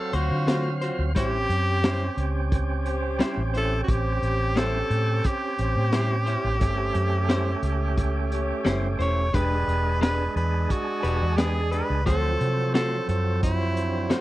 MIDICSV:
0, 0, Header, 1, 7, 480
1, 0, Start_track
1, 0, Tempo, 681818
1, 815, Time_signature, 4, 2, 24, 8
1, 10003, End_track
2, 0, Start_track
2, 0, Title_t, "Tenor saxophone"
2, 0, Program_c, 0, 66
2, 0, Note_on_c, 0, 69, 83
2, 102, Note_on_c, 0, 66, 83
2, 112, Note_off_c, 0, 69, 0
2, 578, Note_off_c, 0, 66, 0
2, 822, Note_on_c, 0, 67, 121
2, 1750, Note_off_c, 0, 67, 0
2, 2517, Note_on_c, 0, 69, 102
2, 2685, Note_off_c, 0, 69, 0
2, 2701, Note_on_c, 0, 66, 68
2, 2751, Note_on_c, 0, 67, 103
2, 2761, Note_off_c, 0, 66, 0
2, 3224, Note_on_c, 0, 69, 109
2, 3235, Note_off_c, 0, 67, 0
2, 3705, Note_on_c, 0, 67, 91
2, 3716, Note_off_c, 0, 69, 0
2, 6099, Note_off_c, 0, 67, 0
2, 6348, Note_on_c, 0, 73, 95
2, 6578, Note_on_c, 0, 71, 112
2, 6588, Note_off_c, 0, 73, 0
2, 7051, Note_off_c, 0, 71, 0
2, 7056, Note_on_c, 0, 71, 103
2, 7278, Note_off_c, 0, 71, 0
2, 7297, Note_on_c, 0, 71, 91
2, 7542, Note_on_c, 0, 66, 93
2, 7553, Note_off_c, 0, 71, 0
2, 8005, Note_on_c, 0, 68, 89
2, 8015, Note_off_c, 0, 66, 0
2, 8250, Note_on_c, 0, 71, 95
2, 8261, Note_off_c, 0, 68, 0
2, 8485, Note_off_c, 0, 71, 0
2, 8489, Note_on_c, 0, 69, 98
2, 8943, Note_off_c, 0, 69, 0
2, 8976, Note_on_c, 0, 69, 100
2, 9197, Note_off_c, 0, 69, 0
2, 9215, Note_on_c, 0, 69, 84
2, 9437, Note_off_c, 0, 69, 0
2, 9455, Note_on_c, 0, 64, 93
2, 9957, Note_off_c, 0, 64, 0
2, 10003, End_track
3, 0, Start_track
3, 0, Title_t, "Horn section"
3, 0, Program_c, 1, 61
3, 104, Note_on_c, 1, 65, 70
3, 104, Note_on_c, 1, 77, 76
3, 109, Note_on_c, 1, 72, 76
3, 464, Note_off_c, 1, 65, 0
3, 464, Note_off_c, 1, 77, 0
3, 467, Note_off_c, 1, 72, 0
3, 831, Note_on_c, 1, 67, 58
3, 833, Note_on_c, 1, 60, 68
3, 833, Note_on_c, 1, 72, 74
3, 1302, Note_off_c, 1, 67, 0
3, 1303, Note_off_c, 1, 60, 0
3, 1303, Note_off_c, 1, 72, 0
3, 2016, Note_on_c, 1, 67, 79
3, 2021, Note_on_c, 1, 60, 90
3, 2021, Note_on_c, 1, 72, 98
3, 2380, Note_off_c, 1, 67, 0
3, 2383, Note_off_c, 1, 60, 0
3, 2383, Note_off_c, 1, 72, 0
3, 2730, Note_on_c, 1, 67, 63
3, 2732, Note_on_c, 1, 60, 65
3, 2732, Note_on_c, 1, 72, 71
3, 3212, Note_off_c, 1, 60, 0
3, 3212, Note_off_c, 1, 67, 0
3, 3212, Note_off_c, 1, 72, 0
3, 3934, Note_on_c, 1, 67, 71
3, 3940, Note_on_c, 1, 60, 80
3, 3940, Note_on_c, 1, 72, 87
3, 4299, Note_off_c, 1, 67, 0
3, 4302, Note_off_c, 1, 60, 0
3, 4302, Note_off_c, 1, 72, 0
3, 4662, Note_on_c, 1, 60, 86
3, 4662, Note_on_c, 1, 72, 93
3, 4663, Note_on_c, 1, 67, 76
3, 5138, Note_off_c, 1, 60, 0
3, 5138, Note_off_c, 1, 67, 0
3, 5138, Note_off_c, 1, 72, 0
3, 5857, Note_on_c, 1, 61, 88
3, 5857, Note_on_c, 1, 73, 96
3, 5860, Note_on_c, 1, 67, 80
3, 6221, Note_off_c, 1, 61, 0
3, 6221, Note_off_c, 1, 73, 0
3, 6222, Note_off_c, 1, 67, 0
3, 6581, Note_on_c, 1, 62, 67
3, 6585, Note_on_c, 1, 67, 57
3, 6585, Note_on_c, 1, 79, 62
3, 7057, Note_off_c, 1, 62, 0
3, 7059, Note_off_c, 1, 67, 0
3, 7059, Note_off_c, 1, 79, 0
3, 7776, Note_on_c, 1, 62, 75
3, 7782, Note_on_c, 1, 56, 62
3, 7782, Note_on_c, 1, 68, 68
3, 8140, Note_off_c, 1, 62, 0
3, 8143, Note_off_c, 1, 56, 0
3, 8143, Note_off_c, 1, 68, 0
3, 8504, Note_on_c, 1, 60, 64
3, 8506, Note_on_c, 1, 53, 55
3, 8506, Note_on_c, 1, 65, 60
3, 8979, Note_off_c, 1, 53, 0
3, 8979, Note_off_c, 1, 60, 0
3, 8979, Note_off_c, 1, 65, 0
3, 9700, Note_on_c, 1, 60, 74
3, 9706, Note_on_c, 1, 50, 60
3, 9706, Note_on_c, 1, 62, 65
3, 10003, Note_off_c, 1, 50, 0
3, 10003, Note_off_c, 1, 60, 0
3, 10003, Note_off_c, 1, 62, 0
3, 10003, End_track
4, 0, Start_track
4, 0, Title_t, "Clean electric guitar"
4, 0, Program_c, 2, 27
4, 94, Note_on_c, 2, 72, 43
4, 106, Note_on_c, 2, 66, 44
4, 113, Note_on_c, 2, 65, 42
4, 243, Note_off_c, 2, 72, 0
4, 249, Note_off_c, 2, 66, 0
4, 252, Note_off_c, 2, 65, 0
4, 334, Note_on_c, 2, 57, 70
4, 340, Note_on_c, 2, 65, 72
4, 344, Note_on_c, 2, 66, 68
4, 349, Note_on_c, 2, 72, 76
4, 482, Note_off_c, 2, 57, 0
4, 485, Note_off_c, 2, 65, 0
4, 487, Note_off_c, 2, 66, 0
4, 490, Note_off_c, 2, 72, 0
4, 574, Note_on_c, 2, 72, 53
4, 586, Note_on_c, 2, 66, 44
4, 594, Note_on_c, 2, 65, 41
4, 722, Note_off_c, 2, 72, 0
4, 728, Note_off_c, 2, 66, 0
4, 733, Note_off_c, 2, 65, 0
4, 812, Note_on_c, 2, 55, 60
4, 819, Note_on_c, 2, 61, 66
4, 823, Note_on_c, 2, 64, 72
4, 828, Note_on_c, 2, 72, 71
4, 961, Note_off_c, 2, 55, 0
4, 965, Note_off_c, 2, 61, 0
4, 967, Note_off_c, 2, 64, 0
4, 969, Note_off_c, 2, 72, 0
4, 1294, Note_on_c, 2, 55, 74
4, 1298, Note_on_c, 2, 61, 73
4, 1303, Note_on_c, 2, 64, 73
4, 1307, Note_on_c, 2, 72, 84
4, 1442, Note_off_c, 2, 55, 0
4, 1444, Note_off_c, 2, 61, 0
4, 1447, Note_off_c, 2, 64, 0
4, 1449, Note_off_c, 2, 72, 0
4, 2248, Note_on_c, 2, 55, 76
4, 2255, Note_on_c, 2, 61, 80
4, 2259, Note_on_c, 2, 64, 80
4, 2262, Note_on_c, 2, 72, 88
4, 2399, Note_off_c, 2, 55, 0
4, 2402, Note_off_c, 2, 61, 0
4, 2404, Note_off_c, 2, 64, 0
4, 2406, Note_off_c, 2, 72, 0
4, 2491, Note_on_c, 2, 72, 49
4, 2505, Note_on_c, 2, 64, 43
4, 2512, Note_on_c, 2, 61, 35
4, 2641, Note_off_c, 2, 72, 0
4, 2647, Note_off_c, 2, 64, 0
4, 2651, Note_off_c, 2, 61, 0
4, 3209, Note_on_c, 2, 55, 66
4, 3216, Note_on_c, 2, 61, 68
4, 3220, Note_on_c, 2, 64, 74
4, 3225, Note_on_c, 2, 72, 75
4, 3359, Note_off_c, 2, 55, 0
4, 3363, Note_off_c, 2, 61, 0
4, 3365, Note_off_c, 2, 64, 0
4, 3367, Note_off_c, 2, 72, 0
4, 4174, Note_on_c, 2, 55, 67
4, 4180, Note_on_c, 2, 61, 73
4, 4184, Note_on_c, 2, 64, 72
4, 4189, Note_on_c, 2, 72, 72
4, 4322, Note_off_c, 2, 55, 0
4, 4325, Note_off_c, 2, 61, 0
4, 4327, Note_off_c, 2, 64, 0
4, 4329, Note_off_c, 2, 72, 0
4, 4408, Note_on_c, 2, 72, 49
4, 4418, Note_on_c, 2, 64, 50
4, 4427, Note_on_c, 2, 61, 42
4, 4559, Note_off_c, 2, 72, 0
4, 4564, Note_off_c, 2, 64, 0
4, 4568, Note_off_c, 2, 61, 0
4, 5131, Note_on_c, 2, 55, 78
4, 5137, Note_on_c, 2, 61, 72
4, 5142, Note_on_c, 2, 64, 75
4, 5146, Note_on_c, 2, 72, 94
4, 5280, Note_off_c, 2, 55, 0
4, 5284, Note_off_c, 2, 61, 0
4, 5286, Note_off_c, 2, 64, 0
4, 5288, Note_off_c, 2, 72, 0
4, 6089, Note_on_c, 2, 55, 74
4, 6094, Note_on_c, 2, 61, 74
4, 6099, Note_on_c, 2, 64, 89
4, 6102, Note_on_c, 2, 72, 78
4, 6239, Note_off_c, 2, 55, 0
4, 6242, Note_off_c, 2, 61, 0
4, 6245, Note_off_c, 2, 64, 0
4, 6246, Note_off_c, 2, 72, 0
4, 6328, Note_on_c, 2, 72, 44
4, 6341, Note_on_c, 2, 64, 44
4, 6350, Note_on_c, 2, 61, 37
4, 6479, Note_off_c, 2, 72, 0
4, 6485, Note_off_c, 2, 64, 0
4, 6490, Note_off_c, 2, 61, 0
4, 6572, Note_on_c, 2, 56, 68
4, 6578, Note_on_c, 2, 62, 74
4, 6581, Note_on_c, 2, 67, 72
4, 6588, Note_on_c, 2, 71, 73
4, 6721, Note_off_c, 2, 56, 0
4, 6724, Note_off_c, 2, 62, 0
4, 6726, Note_off_c, 2, 67, 0
4, 6729, Note_off_c, 2, 71, 0
4, 7049, Note_on_c, 2, 56, 63
4, 7056, Note_on_c, 2, 62, 75
4, 7059, Note_on_c, 2, 67, 68
4, 7063, Note_on_c, 2, 71, 75
4, 7200, Note_off_c, 2, 56, 0
4, 7203, Note_off_c, 2, 62, 0
4, 7205, Note_off_c, 2, 67, 0
4, 7207, Note_off_c, 2, 71, 0
4, 7767, Note_on_c, 2, 71, 47
4, 7779, Note_on_c, 2, 67, 46
4, 7786, Note_on_c, 2, 62, 37
4, 7918, Note_off_c, 2, 71, 0
4, 7925, Note_off_c, 2, 67, 0
4, 7928, Note_off_c, 2, 62, 0
4, 8010, Note_on_c, 2, 56, 68
4, 8014, Note_on_c, 2, 62, 74
4, 8021, Note_on_c, 2, 67, 81
4, 8024, Note_on_c, 2, 71, 86
4, 8160, Note_off_c, 2, 56, 0
4, 8162, Note_off_c, 2, 62, 0
4, 8166, Note_off_c, 2, 67, 0
4, 8167, Note_off_c, 2, 71, 0
4, 8247, Note_on_c, 2, 71, 46
4, 8257, Note_on_c, 2, 67, 42
4, 8266, Note_on_c, 2, 62, 39
4, 8398, Note_off_c, 2, 71, 0
4, 8403, Note_off_c, 2, 67, 0
4, 8408, Note_off_c, 2, 62, 0
4, 8490, Note_on_c, 2, 57, 67
4, 8496, Note_on_c, 2, 65, 64
4, 8499, Note_on_c, 2, 66, 66
4, 8504, Note_on_c, 2, 72, 74
4, 8640, Note_off_c, 2, 57, 0
4, 8643, Note_off_c, 2, 65, 0
4, 8644, Note_off_c, 2, 66, 0
4, 8647, Note_off_c, 2, 72, 0
4, 8971, Note_on_c, 2, 57, 73
4, 8975, Note_on_c, 2, 65, 68
4, 8980, Note_on_c, 2, 66, 71
4, 8983, Note_on_c, 2, 72, 73
4, 9120, Note_off_c, 2, 57, 0
4, 9122, Note_off_c, 2, 65, 0
4, 9124, Note_off_c, 2, 66, 0
4, 9126, Note_off_c, 2, 72, 0
4, 9927, Note_on_c, 2, 57, 74
4, 9931, Note_on_c, 2, 65, 64
4, 9937, Note_on_c, 2, 66, 75
4, 9940, Note_on_c, 2, 72, 81
4, 10003, Note_off_c, 2, 57, 0
4, 10003, Note_off_c, 2, 65, 0
4, 10003, Note_off_c, 2, 66, 0
4, 10003, Note_off_c, 2, 72, 0
4, 10003, End_track
5, 0, Start_track
5, 0, Title_t, "Tonewheel organ"
5, 0, Program_c, 3, 16
5, 0, Note_on_c, 3, 54, 62
5, 0, Note_on_c, 3, 60, 55
5, 0, Note_on_c, 3, 77, 64
5, 786, Note_off_c, 3, 54, 0
5, 792, Note_off_c, 3, 60, 0
5, 799, Note_off_c, 3, 77, 0
5, 806, Note_on_c, 3, 60, 61
5, 820, Note_on_c, 3, 61, 57
5, 834, Note_on_c, 3, 67, 67
5, 4621, Note_off_c, 3, 60, 0
5, 4628, Note_off_c, 3, 61, 0
5, 4635, Note_off_c, 3, 67, 0
5, 4639, Note_on_c, 3, 57, 77
5, 4653, Note_on_c, 3, 61, 66
5, 4667, Note_on_c, 3, 67, 78
5, 6538, Note_off_c, 3, 57, 0
5, 6545, Note_off_c, 3, 61, 0
5, 6552, Note_off_c, 3, 67, 0
5, 6562, Note_on_c, 3, 56, 60
5, 6574, Note_on_c, 3, 62, 53
5, 6589, Note_on_c, 3, 68, 70
5, 8460, Note_off_c, 3, 56, 0
5, 8466, Note_off_c, 3, 62, 0
5, 8473, Note_off_c, 3, 68, 0
5, 8478, Note_on_c, 3, 54, 66
5, 8491, Note_on_c, 3, 60, 57
5, 8504, Note_on_c, 3, 53, 69
5, 10003, Note_off_c, 3, 53, 0
5, 10003, Note_off_c, 3, 54, 0
5, 10003, Note_off_c, 3, 60, 0
5, 10003, End_track
6, 0, Start_track
6, 0, Title_t, "Fingered electric bass"
6, 0, Program_c, 4, 33
6, 95, Note_on_c, 4, 38, 86
6, 203, Note_off_c, 4, 38, 0
6, 220, Note_on_c, 4, 50, 84
6, 634, Note_off_c, 4, 50, 0
6, 695, Note_on_c, 4, 38, 81
6, 817, Note_off_c, 4, 38, 0
6, 817, Note_on_c, 4, 33, 91
6, 1023, Note_off_c, 4, 33, 0
6, 1052, Note_on_c, 4, 42, 83
6, 1467, Note_off_c, 4, 42, 0
6, 1529, Note_on_c, 4, 37, 78
6, 2260, Note_off_c, 4, 37, 0
6, 2375, Note_on_c, 4, 33, 89
6, 2682, Note_off_c, 4, 33, 0
6, 2732, Note_on_c, 4, 33, 95
6, 2940, Note_off_c, 4, 33, 0
6, 2974, Note_on_c, 4, 33, 76
6, 3387, Note_off_c, 4, 33, 0
6, 3452, Note_on_c, 4, 45, 95
6, 3659, Note_off_c, 4, 45, 0
6, 3936, Note_on_c, 4, 33, 95
6, 4043, Note_off_c, 4, 33, 0
6, 4059, Note_on_c, 4, 45, 81
6, 4473, Note_off_c, 4, 45, 0
6, 4536, Note_on_c, 4, 33, 71
6, 4653, Note_off_c, 4, 33, 0
6, 4653, Note_on_c, 4, 31, 92
6, 4860, Note_off_c, 4, 31, 0
6, 4893, Note_on_c, 4, 42, 86
6, 5307, Note_off_c, 4, 42, 0
6, 5368, Note_on_c, 4, 37, 85
6, 5991, Note_off_c, 4, 37, 0
6, 6094, Note_on_c, 4, 30, 77
6, 6310, Note_off_c, 4, 30, 0
6, 6331, Note_on_c, 4, 28, 75
6, 6548, Note_off_c, 4, 28, 0
6, 6574, Note_on_c, 4, 28, 92
6, 6781, Note_off_c, 4, 28, 0
6, 6812, Note_on_c, 4, 28, 83
6, 7227, Note_off_c, 4, 28, 0
6, 7292, Note_on_c, 4, 40, 92
6, 7500, Note_off_c, 4, 40, 0
6, 7771, Note_on_c, 4, 28, 87
6, 7880, Note_off_c, 4, 28, 0
6, 7898, Note_on_c, 4, 40, 82
6, 8312, Note_off_c, 4, 40, 0
6, 8377, Note_on_c, 4, 37, 73
6, 8492, Note_off_c, 4, 37, 0
6, 8492, Note_on_c, 4, 38, 93
6, 8699, Note_off_c, 4, 38, 0
6, 8735, Note_on_c, 4, 48, 84
6, 9148, Note_off_c, 4, 48, 0
6, 9212, Note_on_c, 4, 42, 87
6, 9941, Note_off_c, 4, 42, 0
6, 10003, End_track
7, 0, Start_track
7, 0, Title_t, "Drums"
7, 94, Note_on_c, 9, 42, 64
7, 164, Note_off_c, 9, 42, 0
7, 336, Note_on_c, 9, 42, 85
7, 339, Note_on_c, 9, 38, 105
7, 407, Note_off_c, 9, 42, 0
7, 410, Note_off_c, 9, 38, 0
7, 575, Note_on_c, 9, 42, 59
7, 646, Note_off_c, 9, 42, 0
7, 816, Note_on_c, 9, 42, 88
7, 818, Note_on_c, 9, 36, 96
7, 886, Note_off_c, 9, 42, 0
7, 888, Note_off_c, 9, 36, 0
7, 1058, Note_on_c, 9, 42, 58
7, 1128, Note_off_c, 9, 42, 0
7, 1292, Note_on_c, 9, 42, 89
7, 1295, Note_on_c, 9, 38, 112
7, 1363, Note_off_c, 9, 42, 0
7, 1366, Note_off_c, 9, 38, 0
7, 1533, Note_on_c, 9, 42, 61
7, 1603, Note_off_c, 9, 42, 0
7, 1774, Note_on_c, 9, 36, 84
7, 1775, Note_on_c, 9, 42, 77
7, 1844, Note_off_c, 9, 36, 0
7, 1845, Note_off_c, 9, 42, 0
7, 2011, Note_on_c, 9, 42, 61
7, 2082, Note_off_c, 9, 42, 0
7, 2254, Note_on_c, 9, 42, 79
7, 2257, Note_on_c, 9, 38, 110
7, 2325, Note_off_c, 9, 42, 0
7, 2327, Note_off_c, 9, 38, 0
7, 2496, Note_on_c, 9, 42, 58
7, 2567, Note_off_c, 9, 42, 0
7, 2734, Note_on_c, 9, 36, 111
7, 2735, Note_on_c, 9, 42, 68
7, 2805, Note_off_c, 9, 36, 0
7, 2805, Note_off_c, 9, 42, 0
7, 2977, Note_on_c, 9, 42, 54
7, 3047, Note_off_c, 9, 42, 0
7, 3216, Note_on_c, 9, 42, 75
7, 3219, Note_on_c, 9, 38, 106
7, 3286, Note_off_c, 9, 42, 0
7, 3289, Note_off_c, 9, 38, 0
7, 3454, Note_on_c, 9, 42, 58
7, 3525, Note_off_c, 9, 42, 0
7, 3691, Note_on_c, 9, 42, 82
7, 3694, Note_on_c, 9, 36, 89
7, 3761, Note_off_c, 9, 42, 0
7, 3765, Note_off_c, 9, 36, 0
7, 3932, Note_on_c, 9, 42, 58
7, 4003, Note_off_c, 9, 42, 0
7, 4170, Note_on_c, 9, 42, 79
7, 4173, Note_on_c, 9, 38, 109
7, 4241, Note_off_c, 9, 42, 0
7, 4244, Note_off_c, 9, 38, 0
7, 4413, Note_on_c, 9, 42, 55
7, 4484, Note_off_c, 9, 42, 0
7, 4652, Note_on_c, 9, 42, 82
7, 4655, Note_on_c, 9, 36, 103
7, 4723, Note_off_c, 9, 42, 0
7, 4725, Note_off_c, 9, 36, 0
7, 4892, Note_on_c, 9, 42, 62
7, 4962, Note_off_c, 9, 42, 0
7, 5134, Note_on_c, 9, 42, 88
7, 5137, Note_on_c, 9, 38, 114
7, 5205, Note_off_c, 9, 42, 0
7, 5207, Note_off_c, 9, 38, 0
7, 5371, Note_on_c, 9, 42, 67
7, 5441, Note_off_c, 9, 42, 0
7, 5614, Note_on_c, 9, 42, 80
7, 5615, Note_on_c, 9, 36, 82
7, 5685, Note_off_c, 9, 36, 0
7, 5685, Note_off_c, 9, 42, 0
7, 5856, Note_on_c, 9, 42, 63
7, 5927, Note_off_c, 9, 42, 0
7, 6096, Note_on_c, 9, 42, 85
7, 6099, Note_on_c, 9, 38, 100
7, 6167, Note_off_c, 9, 42, 0
7, 6170, Note_off_c, 9, 38, 0
7, 6339, Note_on_c, 9, 42, 58
7, 6409, Note_off_c, 9, 42, 0
7, 6577, Note_on_c, 9, 36, 99
7, 6577, Note_on_c, 9, 42, 74
7, 6647, Note_off_c, 9, 36, 0
7, 6648, Note_off_c, 9, 42, 0
7, 6820, Note_on_c, 9, 42, 54
7, 6891, Note_off_c, 9, 42, 0
7, 7059, Note_on_c, 9, 42, 85
7, 7062, Note_on_c, 9, 38, 119
7, 7129, Note_off_c, 9, 42, 0
7, 7132, Note_off_c, 9, 38, 0
7, 7298, Note_on_c, 9, 42, 53
7, 7368, Note_off_c, 9, 42, 0
7, 7534, Note_on_c, 9, 42, 76
7, 7535, Note_on_c, 9, 36, 83
7, 7604, Note_off_c, 9, 42, 0
7, 7605, Note_off_c, 9, 36, 0
7, 7774, Note_on_c, 9, 42, 59
7, 7845, Note_off_c, 9, 42, 0
7, 8011, Note_on_c, 9, 42, 78
7, 8014, Note_on_c, 9, 38, 109
7, 8082, Note_off_c, 9, 42, 0
7, 8085, Note_off_c, 9, 38, 0
7, 8253, Note_on_c, 9, 42, 58
7, 8324, Note_off_c, 9, 42, 0
7, 8496, Note_on_c, 9, 36, 99
7, 8497, Note_on_c, 9, 42, 76
7, 8566, Note_off_c, 9, 36, 0
7, 8567, Note_off_c, 9, 42, 0
7, 8736, Note_on_c, 9, 42, 59
7, 8806, Note_off_c, 9, 42, 0
7, 8976, Note_on_c, 9, 42, 81
7, 8979, Note_on_c, 9, 38, 110
7, 9046, Note_off_c, 9, 42, 0
7, 9049, Note_off_c, 9, 38, 0
7, 9213, Note_on_c, 9, 42, 60
7, 9284, Note_off_c, 9, 42, 0
7, 9455, Note_on_c, 9, 36, 87
7, 9455, Note_on_c, 9, 42, 87
7, 9525, Note_off_c, 9, 36, 0
7, 9526, Note_off_c, 9, 42, 0
7, 9693, Note_on_c, 9, 42, 69
7, 9763, Note_off_c, 9, 42, 0
7, 9930, Note_on_c, 9, 42, 85
7, 9933, Note_on_c, 9, 38, 98
7, 10000, Note_off_c, 9, 42, 0
7, 10003, Note_off_c, 9, 38, 0
7, 10003, End_track
0, 0, End_of_file